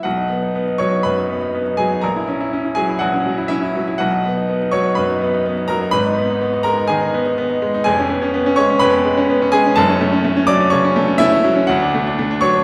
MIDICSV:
0, 0, Header, 1, 2, 480
1, 0, Start_track
1, 0, Key_signature, 5, "major"
1, 0, Tempo, 493421
1, 48, Time_signature, 4, 2, 24, 8
1, 4366, Tempo, 481155
1, 7734, Key_signature, 3, "minor"
1, 12495, End_track
2, 0, Start_track
2, 0, Title_t, "Grand piano"
2, 0, Program_c, 0, 0
2, 0, Control_c, 0, 64, 127
2, 30, Note_on_c, 0, 78, 68
2, 41, Note_on_c, 0, 66, 47
2, 50, Note_on_c, 0, 35, 54
2, 66, Control_c, 0, 64, 0
2, 168, Note_on_c, 0, 63, 45
2, 238, Control_c, 0, 64, 127
2, 291, Note_on_c, 0, 59, 52
2, 367, Note_off_c, 0, 63, 0
2, 415, Note_on_c, 0, 63, 51
2, 490, Note_off_c, 0, 59, 0
2, 536, Note_on_c, 0, 59, 52
2, 613, Note_off_c, 0, 63, 0
2, 658, Note_on_c, 0, 63, 51
2, 733, Note_off_c, 0, 59, 0
2, 742, Note_off_c, 0, 66, 0
2, 762, Note_on_c, 0, 85, 82
2, 773, Note_on_c, 0, 73, 64
2, 776, Note_off_c, 0, 78, 0
2, 782, Note_on_c, 0, 54, 48
2, 855, Note_off_c, 0, 63, 0
2, 900, Note_on_c, 0, 63, 44
2, 976, Note_off_c, 0, 54, 0
2, 996, Note_off_c, 0, 35, 0
2, 1002, Note_off_c, 0, 73, 0
2, 1004, Note_on_c, 0, 83, 70
2, 1013, Note_off_c, 0, 85, 0
2, 1015, Note_on_c, 0, 71, 54
2, 1024, Note_on_c, 0, 42, 45
2, 1094, Note_off_c, 0, 63, 0
2, 1148, Note_on_c, 0, 63, 49
2, 1214, Note_off_c, 0, 42, 0
2, 1262, Note_on_c, 0, 59, 50
2, 1335, Note_off_c, 0, 63, 0
2, 1376, Note_on_c, 0, 63, 53
2, 1452, Note_off_c, 0, 59, 0
2, 1503, Note_on_c, 0, 59, 52
2, 1569, Note_off_c, 0, 63, 0
2, 1622, Note_on_c, 0, 63, 47
2, 1693, Note_off_c, 0, 59, 0
2, 1696, Note_off_c, 0, 71, 0
2, 1724, Note_on_c, 0, 80, 76
2, 1729, Note_off_c, 0, 83, 0
2, 1732, Note_on_c, 0, 68, 59
2, 1745, Note_on_c, 0, 54, 48
2, 1813, Note_off_c, 0, 63, 0
2, 1861, Note_on_c, 0, 63, 49
2, 1935, Note_off_c, 0, 54, 0
2, 1959, Note_off_c, 0, 68, 0
2, 1959, Note_on_c, 0, 82, 68
2, 1973, Note_off_c, 0, 80, 0
2, 1973, Note_on_c, 0, 70, 49
2, 1981, Note_off_c, 0, 63, 0
2, 1981, Note_on_c, 0, 34, 58
2, 1996, Control_c, 0, 64, 0
2, 2101, Note_on_c, 0, 64, 49
2, 2182, Control_c, 0, 64, 127
2, 2221, Note_on_c, 0, 61, 50
2, 2291, Note_off_c, 0, 64, 0
2, 2340, Note_on_c, 0, 64, 55
2, 2411, Note_off_c, 0, 61, 0
2, 2462, Note_on_c, 0, 61, 52
2, 2531, Note_off_c, 0, 64, 0
2, 2578, Note_on_c, 0, 64, 53
2, 2652, Note_off_c, 0, 61, 0
2, 2655, Note_off_c, 0, 70, 0
2, 2674, Note_on_c, 0, 80, 84
2, 2686, Note_on_c, 0, 68, 59
2, 2687, Note_off_c, 0, 82, 0
2, 2696, Note_on_c, 0, 54, 50
2, 2770, Note_off_c, 0, 64, 0
2, 2809, Note_on_c, 0, 64, 50
2, 2888, Note_off_c, 0, 54, 0
2, 2907, Note_on_c, 0, 78, 77
2, 2908, Note_off_c, 0, 34, 0
2, 2913, Note_off_c, 0, 68, 0
2, 2920, Note_on_c, 0, 66, 57
2, 2924, Note_off_c, 0, 80, 0
2, 2928, Note_on_c, 0, 34, 54
2, 3003, Note_off_c, 0, 64, 0
2, 3051, Note_on_c, 0, 61, 49
2, 3168, Note_on_c, 0, 54, 51
2, 3241, Note_off_c, 0, 61, 0
2, 3286, Note_on_c, 0, 64, 56
2, 3358, Note_off_c, 0, 54, 0
2, 3366, Note_off_c, 0, 66, 0
2, 3387, Note_off_c, 0, 64, 0
2, 3387, Note_on_c, 0, 76, 81
2, 3393, Note_off_c, 0, 78, 0
2, 3401, Note_on_c, 0, 64, 62
2, 3408, Note_on_c, 0, 61, 54
2, 3513, Note_off_c, 0, 64, 0
2, 3527, Note_on_c, 0, 64, 51
2, 3600, Note_off_c, 0, 61, 0
2, 3651, Note_on_c, 0, 54, 52
2, 3721, Note_off_c, 0, 64, 0
2, 3770, Note_on_c, 0, 64, 54
2, 3843, Note_off_c, 0, 54, 0
2, 3858, Note_off_c, 0, 34, 0
2, 3872, Note_on_c, 0, 78, 79
2, 3880, Note_off_c, 0, 76, 0
2, 3884, Note_on_c, 0, 66, 57
2, 3891, Note_off_c, 0, 64, 0
2, 3894, Note_on_c, 0, 35, 64
2, 3909, Control_c, 0, 64, 0
2, 4015, Note_on_c, 0, 63, 52
2, 4092, Control_c, 0, 64, 127
2, 4140, Note_on_c, 0, 59, 50
2, 4203, Note_off_c, 0, 63, 0
2, 4252, Note_on_c, 0, 63, 56
2, 4324, Note_off_c, 0, 59, 0
2, 4373, Note_on_c, 0, 59, 56
2, 4440, Note_off_c, 0, 63, 0
2, 4491, Note_on_c, 0, 63, 55
2, 4562, Note_off_c, 0, 59, 0
2, 4563, Note_off_c, 0, 66, 0
2, 4593, Note_on_c, 0, 85, 90
2, 4597, Note_off_c, 0, 78, 0
2, 4603, Note_on_c, 0, 73, 67
2, 4613, Note_on_c, 0, 54, 54
2, 4681, Note_off_c, 0, 63, 0
2, 4735, Note_on_c, 0, 63, 54
2, 4802, Note_off_c, 0, 54, 0
2, 4820, Note_off_c, 0, 35, 0
2, 4829, Note_off_c, 0, 73, 0
2, 4829, Note_on_c, 0, 83, 71
2, 4840, Note_off_c, 0, 85, 0
2, 4846, Note_on_c, 0, 71, 62
2, 4851, Note_on_c, 0, 42, 51
2, 4924, Note_off_c, 0, 63, 0
2, 4967, Note_on_c, 0, 63, 51
2, 5042, Note_off_c, 0, 42, 0
2, 5089, Note_on_c, 0, 59, 62
2, 5161, Note_off_c, 0, 63, 0
2, 5217, Note_on_c, 0, 63, 58
2, 5282, Note_off_c, 0, 59, 0
2, 5334, Note_on_c, 0, 59, 58
2, 5406, Note_off_c, 0, 63, 0
2, 5448, Note_on_c, 0, 63, 52
2, 5525, Note_off_c, 0, 59, 0
2, 5530, Note_off_c, 0, 71, 0
2, 5552, Note_on_c, 0, 82, 98
2, 5562, Note_off_c, 0, 83, 0
2, 5565, Note_on_c, 0, 70, 67
2, 5576, Note_on_c, 0, 54, 53
2, 5642, Note_off_c, 0, 63, 0
2, 5689, Note_on_c, 0, 63, 56
2, 5766, Note_off_c, 0, 54, 0
2, 5788, Note_on_c, 0, 83, 99
2, 5792, Note_off_c, 0, 70, 0
2, 5799, Note_on_c, 0, 32, 59
2, 5802, Note_off_c, 0, 82, 0
2, 5802, Note_on_c, 0, 71, 69
2, 5810, Note_off_c, 0, 63, 0
2, 5812, Note_on_c, 0, 44, 58
2, 5828, Control_c, 0, 64, 0
2, 5936, Note_on_c, 0, 63, 55
2, 5976, Control_c, 0, 64, 127
2, 6055, Note_on_c, 0, 59, 58
2, 6125, Note_off_c, 0, 63, 0
2, 6176, Note_on_c, 0, 63, 60
2, 6244, Note_off_c, 0, 59, 0
2, 6285, Note_on_c, 0, 59, 60
2, 6364, Note_off_c, 0, 63, 0
2, 6406, Note_on_c, 0, 63, 62
2, 6479, Note_off_c, 0, 59, 0
2, 6484, Note_off_c, 0, 71, 0
2, 6505, Note_on_c, 0, 82, 93
2, 6516, Note_on_c, 0, 70, 69
2, 6517, Note_off_c, 0, 83, 0
2, 6527, Note_on_c, 0, 56, 54
2, 6599, Note_off_c, 0, 63, 0
2, 6647, Note_on_c, 0, 63, 58
2, 6720, Note_off_c, 0, 56, 0
2, 6734, Note_off_c, 0, 32, 0
2, 6741, Note_off_c, 0, 44, 0
2, 6746, Note_off_c, 0, 70, 0
2, 6747, Note_on_c, 0, 80, 85
2, 6758, Note_off_c, 0, 82, 0
2, 6761, Note_on_c, 0, 68, 63
2, 6769, Note_on_c, 0, 51, 58
2, 6841, Note_off_c, 0, 63, 0
2, 6884, Note_on_c, 0, 63, 61
2, 6963, Note_off_c, 0, 51, 0
2, 7011, Note_on_c, 0, 59, 66
2, 7081, Note_off_c, 0, 63, 0
2, 7128, Note_on_c, 0, 63, 64
2, 7205, Note_off_c, 0, 59, 0
2, 7215, Note_off_c, 0, 68, 0
2, 7243, Note_off_c, 0, 80, 0
2, 7250, Note_on_c, 0, 59, 70
2, 7324, Note_off_c, 0, 63, 0
2, 7369, Note_on_c, 0, 63, 55
2, 7445, Note_off_c, 0, 59, 0
2, 7489, Note_on_c, 0, 56, 65
2, 7564, Note_off_c, 0, 63, 0
2, 7612, Note_on_c, 0, 63, 69
2, 7684, Note_off_c, 0, 56, 0
2, 7712, Note_on_c, 0, 80, 95
2, 7724, Note_on_c, 0, 29, 67
2, 7726, Note_on_c, 0, 68, 68
2, 7732, Note_on_c, 0, 41, 67
2, 7733, Note_off_c, 0, 63, 0
2, 7754, Control_c, 0, 64, 0
2, 7855, Note_on_c, 0, 61, 60
2, 7901, Control_c, 0, 64, 127
2, 7967, Note_on_c, 0, 59, 60
2, 8043, Note_off_c, 0, 61, 0
2, 8086, Note_on_c, 0, 61, 66
2, 8158, Note_off_c, 0, 59, 0
2, 8208, Note_on_c, 0, 59, 71
2, 8276, Note_off_c, 0, 61, 0
2, 8330, Note_on_c, 0, 61, 67
2, 8396, Note_off_c, 0, 59, 0
2, 8399, Note_off_c, 0, 68, 0
2, 8428, Note_on_c, 0, 85, 102
2, 8432, Note_off_c, 0, 80, 0
2, 8439, Note_on_c, 0, 73, 80
2, 8450, Note_on_c, 0, 56, 64
2, 8517, Note_off_c, 0, 61, 0
2, 8568, Note_on_c, 0, 61, 64
2, 8636, Note_off_c, 0, 56, 0
2, 8647, Note_off_c, 0, 29, 0
2, 8651, Note_off_c, 0, 41, 0
2, 8661, Note_off_c, 0, 73, 0
2, 8662, Note_on_c, 0, 83, 105
2, 8672, Note_off_c, 0, 85, 0
2, 8672, Note_on_c, 0, 71, 77
2, 8680, Note_on_c, 0, 41, 66
2, 8755, Note_off_c, 0, 61, 0
2, 8800, Note_on_c, 0, 59, 67
2, 8915, Note_on_c, 0, 56, 68
2, 8991, Note_off_c, 0, 59, 0
2, 9039, Note_on_c, 0, 61, 70
2, 9110, Note_off_c, 0, 56, 0
2, 9164, Note_on_c, 0, 59, 72
2, 9233, Note_off_c, 0, 61, 0
2, 9284, Note_on_c, 0, 61, 68
2, 9356, Note_off_c, 0, 59, 0
2, 9358, Note_off_c, 0, 71, 0
2, 9384, Note_on_c, 0, 80, 106
2, 9393, Note_off_c, 0, 83, 0
2, 9395, Note_on_c, 0, 68, 81
2, 9402, Note_on_c, 0, 56, 63
2, 9476, Note_off_c, 0, 61, 0
2, 9528, Note_on_c, 0, 61, 64
2, 9594, Note_off_c, 0, 56, 0
2, 9612, Note_off_c, 0, 41, 0
2, 9621, Note_off_c, 0, 68, 0
2, 9622, Note_on_c, 0, 81, 108
2, 9632, Note_off_c, 0, 80, 0
2, 9632, Note_on_c, 0, 30, 75
2, 9633, Note_on_c, 0, 69, 85
2, 9644, Note_off_c, 0, 61, 0
2, 9644, Note_on_c, 0, 42, 80
2, 9658, Control_c, 0, 64, 0
2, 9760, Note_on_c, 0, 61, 67
2, 9800, Control_c, 0, 64, 127
2, 9875, Note_on_c, 0, 57, 72
2, 9949, Note_off_c, 0, 61, 0
2, 9986, Note_on_c, 0, 61, 70
2, 10066, Note_off_c, 0, 57, 0
2, 10109, Note_on_c, 0, 57, 70
2, 10181, Note_off_c, 0, 61, 0
2, 10230, Note_on_c, 0, 61, 71
2, 10301, Note_off_c, 0, 57, 0
2, 10308, Note_off_c, 0, 69, 0
2, 10331, Note_on_c, 0, 86, 119
2, 10342, Note_off_c, 0, 81, 0
2, 10342, Note_on_c, 0, 74, 88
2, 10350, Note_on_c, 0, 54, 67
2, 10422, Note_off_c, 0, 61, 0
2, 10465, Note_on_c, 0, 61, 62
2, 10541, Note_off_c, 0, 54, 0
2, 10557, Note_off_c, 0, 30, 0
2, 10563, Note_off_c, 0, 42, 0
2, 10565, Note_on_c, 0, 85, 104
2, 10568, Note_off_c, 0, 74, 0
2, 10579, Note_off_c, 0, 86, 0
2, 10579, Note_on_c, 0, 73, 66
2, 10588, Note_on_c, 0, 49, 61
2, 10659, Note_off_c, 0, 61, 0
2, 10709, Note_on_c, 0, 61, 71
2, 10779, Note_off_c, 0, 49, 0
2, 10824, Note_on_c, 0, 57, 77
2, 10898, Note_off_c, 0, 61, 0
2, 10941, Note_on_c, 0, 61, 67
2, 11015, Note_off_c, 0, 57, 0
2, 11026, Note_off_c, 0, 73, 0
2, 11042, Note_on_c, 0, 76, 110
2, 11052, Note_off_c, 0, 85, 0
2, 11054, Note_on_c, 0, 64, 92
2, 11063, Note_on_c, 0, 57, 73
2, 11134, Note_off_c, 0, 61, 0
2, 11181, Note_on_c, 0, 61, 62
2, 11256, Note_off_c, 0, 57, 0
2, 11303, Note_on_c, 0, 54, 65
2, 11377, Note_off_c, 0, 61, 0
2, 11424, Note_on_c, 0, 61, 64
2, 11500, Note_off_c, 0, 54, 0
2, 11511, Note_off_c, 0, 64, 0
2, 11530, Note_on_c, 0, 78, 89
2, 11539, Note_off_c, 0, 76, 0
2, 11543, Note_on_c, 0, 66, 64
2, 11549, Note_off_c, 0, 61, 0
2, 11552, Note_on_c, 0, 38, 82
2, 11569, Control_c, 0, 64, 0
2, 11680, Note_on_c, 0, 62, 68
2, 11715, Control_c, 0, 64, 127
2, 11802, Note_on_c, 0, 57, 67
2, 11871, Note_off_c, 0, 62, 0
2, 11930, Note_on_c, 0, 62, 70
2, 11993, Note_off_c, 0, 57, 0
2, 12048, Note_on_c, 0, 57, 69
2, 12119, Note_off_c, 0, 62, 0
2, 12167, Note_on_c, 0, 62, 70
2, 12239, Note_off_c, 0, 57, 0
2, 12239, Note_off_c, 0, 66, 0
2, 12267, Note_on_c, 0, 85, 105
2, 12273, Note_off_c, 0, 78, 0
2, 12276, Note_on_c, 0, 73, 77
2, 12286, Note_on_c, 0, 54, 60
2, 12360, Note_off_c, 0, 62, 0
2, 12410, Note_on_c, 0, 62, 59
2, 12482, Note_off_c, 0, 54, 0
2, 12495, Note_off_c, 0, 38, 0
2, 12495, Note_off_c, 0, 62, 0
2, 12495, Note_off_c, 0, 73, 0
2, 12495, Note_off_c, 0, 85, 0
2, 12495, End_track
0, 0, End_of_file